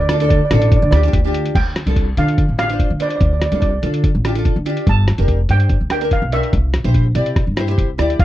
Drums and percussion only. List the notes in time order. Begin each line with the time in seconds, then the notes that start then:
0.09 cross-stick, closed hi-hat
0.20 closed hi-hat
0.30 kick, closed hi-hat
0.51 cross-stick, closed hi-hat
0.62 closed hi-hat
0.72 kick, closed hi-hat
0.93 cross-stick, closed hi-hat
1.03 closed hi-hat
1.13 kick, closed hi-hat
1.34 closed hi-hat
1.46 closed hi-hat
1.55 kick, closed hi-hat, crash
1.76 cross-stick, closed hi-hat
1.87 closed hi-hat
1.96 kick, closed hi-hat
2.17 closed hi-hat
2.28 closed hi-hat
2.38 kick, closed hi-hat
2.59 cross-stick, closed hi-hat
2.70 closed hi-hat
2.79 kick, closed hi-hat
3.00 closed hi-hat
3.10 closed hi-hat
3.21 kick, closed hi-hat
3.42 cross-stick, closed hi-hat
3.52 closed hi-hat
3.62 kick, closed hi-hat
3.83 closed hi-hat
3.94 closed hi-hat
4.04 kick, closed hi-hat
4.25 cross-stick, closed hi-hat
4.35 closed hi-hat
4.45 kick, closed hi-hat
4.66 closed hi-hat
4.77 closed hi-hat
4.87 kick, closed hi-hat
5.08 cross-stick, closed hi-hat
5.18 closed hi-hat
5.28 kick, closed hi-hat
5.49 closed hi-hat
5.60 closed hi-hat
5.69 kick, closed hi-hat
5.90 cross-stick, closed hi-hat
6.01 closed hi-hat
6.11 kick, closed hi-hat
6.32 closed hi-hat
6.43 closed hi-hat
6.53 kick, closed hi-hat
6.74 cross-stick, closed hi-hat
6.84 closed hi-hat
6.94 kick, closed hi-hat
7.15 closed hi-hat
7.26 closed hi-hat
7.36 kick, cross-stick, closed hi-hat
7.57 cross-stick, closed hi-hat
7.68 closed hi-hat
7.78 kick, closed hi-hat
7.99 cross-stick, closed hi-hat
8.10 closed hi-hat
8.19 kick, closed hi-hat